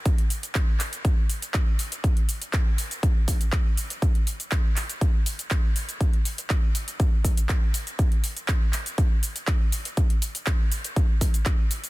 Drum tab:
HH |xxoxx-oxx-oxx-ox|xxoxx-oxx-oxx-ox|xxoxx-oxx-oxx-ox|xxoxx-oxx-oxx-ox|
SH |x-xxx-xxx-xxx-xx|x-xxx-xxx-xxx-xx|x-xxx-xxx-xxx-xx|x-xxx-xxx-xxx-xx|
CP |----x-x-----x---|----x-------x---|----x-x-----x---|----x-------x---|
BD |o---o---o---o---|o---o---o-o-o---|o---o---o---o---|o---o---o-o-o---|

HH |xxoxx-oxx-oxx-ox|xxoxx-oxx-oxx-ox|
SH |x-xxx-xxx-xxx-xx|x-xxx-xxx-xxx-xx|
CP |----x-x-----x---|----x-------x---|
BD |o---o---o---o---|o---o---o-o-o---|